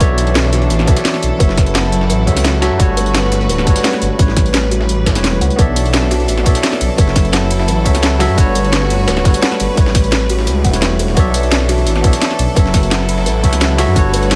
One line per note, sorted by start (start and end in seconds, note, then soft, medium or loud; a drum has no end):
0.00 0.69 B1 loud
0.00 1.39 E3 medium
0.00 0.84 B3 medium
0.00 1.39 D4 medium
0.00 0.85 F#4 medium
0.00 0.85 A4 medium
0.00 2.77 A4 medium
0.00 0.16 B4 medium
0.00 0.86 C#5 medium
0.00 0.87 D5 medium
0.00 0.87 E5 loud
0.00 kick loud
0.00 closed hi-hat medium
0.00 tambourine soft
0.18 closed hi-hat medium
0.18 tambourine medium
0.27 tambourine soft
0.35 snare loud
0.35 closed hi-hat medium
0.35 tambourine soft
0.44 snare soft
0.53 0.69 F#4 medium
0.53 snare soft
0.53 closed hi-hat medium
0.62 closed hi-hat soft
0.70 0.86 A1 loud
0.70 closed hi-hat medium
0.70 tambourine medium
0.79 snare medium
0.85 0.96 B1 medium
0.85 1.37 B3 medium
0.85 1.37 F#4 medium
0.85 1.38 A4 medium
0.85 1.03 B4 medium
0.85 1.39 C#5 medium
0.85 kick loud
0.85 closed hi-hat medium
0.85 tambourine soft
0.90 1.39 D5 medium
0.90 1.40 E5 medium
0.96 snare medium
0.96 tambourine medium
1.05 snare loud
1.05 closed hi-hat medium
1.05 open hi-hat medium
1.05 tambourine soft
1.14 snare medium
1.23 1.31 B1 loud
1.23 closed hi-hat medium
1.23 tambourine soft
1.38 2.11 F#1 loud
1.38 2.24 F#3 medium
1.38 2.78 F#3 medium
1.38 2.78 E4 medium
1.38 2.25 F#4 medium
1.38 2.25 A4 medium
1.38 1.56 B4 loud
1.38 kick loud
1.38 closed hi-hat medium
1.38 tambourine soft
1.42 2.26 C#5 medium
1.42 2.27 E5 medium
1.49 snare soft
1.57 kick loud
1.57 snare medium
1.57 closed hi-hat medium
1.57 tambourine medium
1.66 tambourine soft
1.75 1.85 F#5 medium
1.75 snare loud
1.75 closed hi-hat medium
1.75 tambourine medium
1.92 closed hi-hat loud
1.92 closed hi-hat medium
2.01 snare soft
2.10 2.29 A1 medium
2.10 2.26 B4 medium
2.10 closed hi-hat medium
2.10 tambourine medium
2.26 2.70 C#2 loud
2.26 2.59 F#3 medium
2.26 2.60 F#4 medium
2.26 2.60 A4 medium
2.26 2.61 C#5 medium
2.26 2.61 E5 medium
2.26 kick medium
2.26 closed hi-hat medium
2.26 tambourine soft
2.37 snare soft
2.37 tambourine medium
2.44 snare loud
2.44 closed hi-hat medium
2.44 tambourine soft
2.61 2.77 F#3 medium
2.61 2.77 F#4 medium
2.61 2.78 F#4 medium
2.61 2.78 A4 medium
2.61 2.78 C#5 medium
2.61 2.78 E5 loud
2.61 snare loud
2.61 closed hi-hat medium
2.61 closed hi-hat loud
2.61 tambourine soft
2.71 2.79 F#2 loud
2.77 3.48 G1 loud
2.77 3.63 G3 medium
2.77 4.18 A3 medium
2.77 3.64 D4 medium
2.77 3.65 F#4 medium
2.77 4.18 F#4 medium
2.77 3.65 A4 medium
2.77 4.18 B4 medium
2.77 kick loud
2.77 closed hi-hat medium
2.77 tambourine medium
2.81 3.66 B4 medium
2.81 3.66 C#5 loud
2.97 3.13 B4 medium
2.97 closed hi-hat medium
2.97 tambourine medium
3.06 tambourine soft
3.15 snare loud
3.15 closed hi-hat medium
3.15 tambourine medium
3.23 snare soft
3.32 snare soft
3.32 closed hi-hat loud
3.32 closed hi-hat medium
3.41 closed hi-hat soft
3.49 3.65 D1 loud
3.49 3.65 B4 loud
3.49 closed hi-hat medium
3.49 tambourine medium
3.58 snare medium
3.64 3.75 G1 medium
3.64 4.16 G3 medium
3.64 4.16 D4 medium
3.64 4.17 F#4 medium
3.64 4.17 A4 medium
3.64 kick loud
3.64 closed hi-hat medium
3.64 tambourine soft
3.69 4.18 B4 medium
3.69 4.19 C#5 medium
3.76 snare medium
3.76 tambourine medium
3.84 3.94 F#5 medium
3.84 snare loud
3.84 closed hi-hat medium
3.84 open hi-hat medium
3.84 tambourine medium
3.93 snare medium
4.02 4.10 G1 loud
4.02 closed hi-hat loud
4.02 closed hi-hat medium
4.02 tambourine soft
4.17 4.88 A1 loud
4.17 5.57 G3 medium
4.17 5.04 G3 medium
4.17 5.03 A3 medium
4.17 5.04 E4 medium
4.17 5.57 B4 medium
4.17 4.35 B4 medium
4.17 kick loud
4.17 closed hi-hat medium
4.17 tambourine medium
4.21 5.05 B4 medium
4.21 5.06 C#5 medium
4.28 snare soft
4.37 kick loud
4.37 snare medium
4.37 closed hi-hat loud
4.37 closed hi-hat medium
4.37 tambourine medium
4.46 tambourine soft
4.54 snare loud
4.54 closed hi-hat medium
4.54 closed hi-hat loud
4.54 tambourine medium
4.71 4.87 F#4 medium
4.71 closed hi-hat loud
4.71 closed hi-hat medium
4.81 snare soft
4.89 5.17 A1 loud
4.89 closed hi-hat medium
4.89 tambourine medium
5.06 5.16 B4 medium
5.06 kick medium
5.06 snare loud
5.06 closed hi-hat loud
5.06 closed hi-hat medium
5.06 tambourine soft
5.13 5.40 E1 medium
5.13 5.55 A3 medium
5.13 5.56 E4 medium
5.13 5.57 G4 medium
5.13 snare soft
5.13 tambourine medium
5.17 5.57 B4 medium
5.17 5.58 C#5 medium
5.24 snare loud
5.24 snare soft
5.24 closed hi-hat medium
5.24 tambourine soft
5.33 closed hi-hat soft
5.41 5.49 C#2 medium
5.41 5.51 F#5 medium
5.41 closed hi-hat medium
5.41 closed hi-hat loud
5.41 tambourine soft
5.50 tambourine soft
5.56 6.27 B1 loud
5.56 6.97 E3 medium
5.56 6.42 B3 loud
5.56 6.97 D4 medium
5.56 6.43 F#4 medium
5.56 6.44 A4 medium
5.56 8.35 A4 medium
5.56 5.75 B4 medium
5.56 6.44 C#5 medium
5.56 kick loud
5.56 closed hi-hat medium
5.56 tambourine soft
5.61 6.45 D5 medium
5.61 6.45 E5 loud
5.76 closed hi-hat medium
5.76 closed hi-hat loud
5.76 ride medium
5.76 tambourine medium
5.85 tambourine soft
5.93 snare loud
5.93 closed hi-hat medium
5.93 tambourine soft
6.02 snare soft
6.11 6.27 F#4 medium
6.11 snare soft
6.11 closed hi-hat medium
6.11 closed hi-hat loud
6.11 ride medium
6.20 closed hi-hat soft
6.28 6.44 A1 medium
6.28 closed hi-hat medium
6.28 tambourine soft
6.38 snare medium
6.43 6.54 B1 medium
6.43 6.95 B3 medium
6.43 6.95 F#4 medium
6.43 6.96 A4 medium
6.43 6.62 B4 medium
6.43 6.97 C#5 medium
6.43 kick loud
6.43 closed hi-hat medium
6.43 closed hi-hat loud
6.43 ride medium
6.43 tambourine soft
6.48 6.97 D5 medium
6.48 6.98 E5 medium
6.55 snare medium
6.55 tambourine medium
6.63 snare loud
6.63 closed hi-hat medium
6.63 open hi-hat medium
6.63 tambourine soft
6.72 snare medium
6.81 6.89 B1 loud
6.81 closed hi-hat medium
6.81 closed hi-hat loud
6.81 ride medium
6.81 tambourine soft
6.95 7.69 F#1 loud
6.95 7.82 F#3 medium
6.95 8.36 F#3 medium
6.95 8.36 E4 medium
6.95 7.83 F#4 medium
6.95 7.83 A4 medium
6.95 7.14 B4 loud
6.95 kick loud
6.95 closed hi-hat medium
6.95 tambourine soft
7.00 7.84 C#5 medium
7.00 7.85 E5 medium
7.07 snare soft
7.16 kick loud
7.16 snare medium
7.16 closed hi-hat medium
7.16 closed hi-hat loud
7.16 ride medium
7.16 tambourine medium
7.25 tambourine soft
7.33 7.43 F#5 medium
7.33 snare loud
7.33 closed hi-hat medium
7.33 tambourine soft
7.50 closed hi-hat medium
7.50 closed hi-hat loud
7.50 ride medium
7.59 snare soft
7.68 7.87 A1 medium
7.68 7.84 B4 medium
7.68 closed hi-hat medium
7.68 tambourine soft
7.84 8.28 C#2 loud
7.84 8.18 F#3 medium
7.84 8.18 F#4 medium
7.84 8.18 A4 medium
7.84 8.19 C#5 medium
7.84 8.19 E5 medium
7.84 kick medium
7.84 closed hi-hat medium
7.84 closed hi-hat loud
7.84 ride medium
7.84 tambourine soft
7.95 snare medium
7.95 tambourine medium
8.03 snare loud
8.03 closed hi-hat medium
8.03 tambourine soft
8.19 8.35 F#3 medium
8.19 8.35 F#4 medium
8.19 8.36 F#4 medium
8.19 8.36 A4 medium
8.19 8.36 C#5 medium
8.19 8.36 E5 loud
8.19 snare loud
8.19 closed hi-hat medium
8.19 closed hi-hat loud
8.19 ride medium
8.19 tambourine soft
8.29 8.37 F#2 loud
8.35 9.06 G1 loud
8.35 9.21 G3 loud
8.35 9.76 A3 medium
8.35 9.22 D4 medium
8.35 9.23 F#4 medium
8.35 9.76 F#4 medium
8.35 9.23 A4 medium
8.35 11.14 B4 medium
8.35 9.76 C#5 medium
8.35 kick loud
8.35 closed hi-hat medium
8.35 tambourine soft
8.39 9.24 B4 medium
8.39 9.24 C#5 loud
8.55 8.71 B4 medium
8.55 closed hi-hat medium
8.55 ride medium
8.55 tambourine medium
8.64 tambourine soft
8.73 snare loud
8.73 closed hi-hat medium
8.73 tambourine soft
8.82 snare soft
8.90 closed hi-hat medium
8.90 closed hi-hat loud
8.90 ride medium
9.08 9.23 D1 loud
9.08 9.23 B4 loud
9.08 snare loud
9.08 closed hi-hat medium
9.08 tambourine soft
9.17 snare soft
9.17 snare medium
9.23 9.33 G1 loud
9.23 9.74 G3 medium
9.23 9.75 D4 medium
9.23 9.75 F#4 medium
9.23 9.76 A4 medium
9.23 kick loud
9.23 snare soft
9.23 closed hi-hat medium
9.23 ride medium
9.23 tambourine soft
9.27 9.76 B4 medium
9.27 9.77 C#5 medium
9.34 closed hi-hat soft
9.34 tambourine medium
9.42 9.52 F#5 medium
9.42 snare loud
9.42 closed hi-hat medium
9.42 open hi-hat medium
9.42 tambourine soft
9.51 snare medium
9.60 9.68 G1 loud
9.60 closed hi-hat loud
9.60 closed hi-hat medium
9.60 ride medium
9.60 tambourine soft
9.75 10.49 A1 loud
9.75 10.63 G3 medium
9.75 11.16 G3 medium
9.75 10.61 A3 medium
9.75 10.62 E4 medium
9.75 9.93 B4 medium
9.75 kick loud
9.75 closed hi-hat medium
9.75 tambourine soft
9.79 10.63 B4 medium
9.79 10.64 C#5 medium
9.86 snare soft
9.95 kick loud
9.95 snare medium
9.95 closed hi-hat medium
9.95 ride medium
9.95 tambourine medium
10.04 tambourine soft
10.12 snare loud
10.12 closed hi-hat medium
10.12 tambourine soft
10.30 10.45 F#4 medium
10.30 closed hi-hat medium
10.30 ride medium
10.39 snare soft
10.47 10.66 C#2 medium
10.47 closed hi-hat medium
10.47 tambourine soft
10.64 11.07 E1 loud
10.64 10.74 F#5 loud
10.64 kick medium
10.64 closed hi-hat medium
10.64 ride medium
10.64 tambourine soft
10.71 11.13 A3 medium
10.71 11.14 E4 medium
10.71 11.15 G4 medium
10.71 snare soft
10.71 tambourine medium
10.75 11.15 B4 medium
10.75 11.16 C#5 medium
10.82 snare loud
10.82 closed hi-hat medium
10.82 tambourine soft
10.99 11.09 A4 medium
10.99 closed hi-hat medium
10.99 ride medium
10.99 tambourine soft
11.08 11.16 E1 loud
11.08 snare soft
11.14 11.85 B1 loud
11.14 12.55 E3 medium
11.14 12.00 B3 loud
11.14 12.55 D4 medium
11.14 12.01 F#4 medium
11.14 12.02 A4 medium
11.14 13.93 A4 medium
11.14 11.33 B4 medium
11.14 12.02 C#5 medium
11.14 kick loud
11.14 closed hi-hat medium
11.14 tambourine soft
11.19 12.03 D5 medium
11.19 12.04 E5 loud
11.34 closed hi-hat medium
11.34 ride medium
11.34 tambourine medium
11.43 tambourine soft
11.51 snare loud
11.51 closed hi-hat medium
11.51 tambourine soft
11.60 snare soft
11.69 11.85 F#4 medium
11.69 snare soft
11.69 closed hi-hat medium
11.69 ride medium
11.78 closed hi-hat soft
11.86 12.02 A1 loud
11.86 closed hi-hat medium
11.86 tambourine soft
11.96 snare medium
12.01 12.12 B1 loud
12.01 12.53 B3 medium
12.01 12.54 F#4 medium
12.01 12.54 A4 medium
12.01 12.20 B4 medium
12.01 12.55 C#5 medium
12.01 kick loud
12.01 closed hi-hat medium
12.01 ride medium
12.01 tambourine soft
12.06 12.55 D5 medium
12.06 12.56 E5 medium
12.13 snare medium
12.13 tambourine medium
12.22 snare loud
12.22 closed hi-hat medium
12.22 open hi-hat medium
12.22 tambourine soft
12.31 snare medium
12.39 12.47 B1 loud
12.39 closed hi-hat medium
12.39 ride medium
12.39 tambourine soft
12.54 13.28 F#1 loud
12.54 13.40 F#3 medium
12.54 13.95 F#3 medium
12.54 13.94 E4 medium
12.54 13.41 F#4 medium
12.54 13.42 A4 medium
12.54 12.72 B4 loud
12.54 kick loud
12.54 closed hi-hat medium
12.54 tambourine soft
12.58 13.42 C#5 medium
12.58 13.43 E5 medium
12.66 snare soft
12.74 kick loud
12.74 snare medium
12.74 closed hi-hat medium
12.74 ride medium
12.74 tambourine medium
12.83 tambourine soft
12.91 13.01 F#5 medium
12.91 snare loud
12.91 closed hi-hat medium
12.91 tambourine medium
13.09 closed hi-hat medium
13.09 closed hi-hat loud
13.09 ride medium
13.18 snare soft
13.26 13.45 A1 medium
13.26 13.42 B4 medium
13.26 closed hi-hat medium
13.26 tambourine soft
13.42 13.86 C#2 loud
13.42 13.76 F#3 medium
13.42 13.76 F#4 medium
13.42 13.76 A4 medium
13.42 13.77 C#5 medium
13.42 13.77 E5 medium
13.42 kick medium
13.42 closed hi-hat medium
13.42 ride medium
13.42 tambourine soft
13.53 snare soft
13.53 tambourine medium
13.61 snare loud
13.61 closed hi-hat medium
13.61 tambourine medium
13.77 13.93 F#3 medium
13.77 13.94 F#4 medium
13.77 13.94 A4 medium
13.77 13.94 C#5 medium
13.77 13.95 E5 loud
13.77 snare loud
13.77 closed hi-hat medium
13.77 closed hi-hat loud
13.77 ride medium
13.77 tambourine soft
13.88 13.95 F#2 loud
13.93 14.35 G1 loud
13.93 14.35 G3 loud
13.93 14.35 A3 medium
13.93 14.35 D4 medium
13.93 14.35 F#4 medium
13.93 14.35 A4 medium
13.93 14.35 B4 medium
13.93 14.35 C#5 medium
13.93 kick loud
13.93 closed hi-hat medium
13.93 tambourine medium
13.97 14.35 B4 medium
13.97 14.35 C#5 loud
14.13 14.29 B4 medium
14.13 closed hi-hat medium
14.13 closed hi-hat loud
14.13 ride medium
14.13 tambourine medium
14.23 tambourine soft
14.31 snare loud
14.31 closed hi-hat medium
14.31 tambourine medium